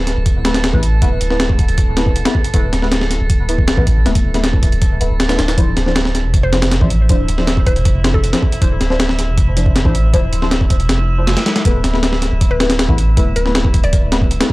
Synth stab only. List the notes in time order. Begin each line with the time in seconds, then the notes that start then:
Already playing: A3 B3 E4 B4
0.45 A3 B3 E4 B4
0.74 A3 B3 E4 B4
1.02 A3 B3 E4 B4
1.30 A3 B3 E4 B4
1.97 A3 B3 E4 B4
2.25 A3 B3 E4 B4
2.54 A3 B3 E4 B4
2.82 A3 B3 E4 B4
3.49 A3 B3 E4 B4
3.77 A3 B3 E4 B4
4.06 A3 B3 E4 B4
4.34 A3 B3 E4 B4
5.01 A3 B3 E4 B4
5.29 A3 B3 E4 B4
5.58 F3 D4 E4 C5
5.86 F3 D4 E4 C5
6.53 F3 D4 E4 C5
6.81 F3 D4 E4 C5
7.10 F3 D4 E4 C5
7.38 F3 D4 E4 C5
8.05 F3 D4 E4 C5
8.33 F3 D4 E4 C5
8.62 F3 D4 E4 C5
8.90 F3 D4 E4 C5
9.57 F3 D4 E4 C5
9.85 F3 D4 E4 C5
10.14 F3 D4 E4 C5
10.42 F3 D4 E4 C5
11.18 F3 D4 E4 C5
11.65 A3 B3 E4 B4
11.94 A3 B3 E4 B4
12.60 A3 B3 E4 B4
12.89 A3 B3 E4 B4
13.17 A3 B3 E4 B4
13.46 A3 B3 E4 B4
14.12 A3 B3 E4 B4
14.41 A3 B3 E4 B4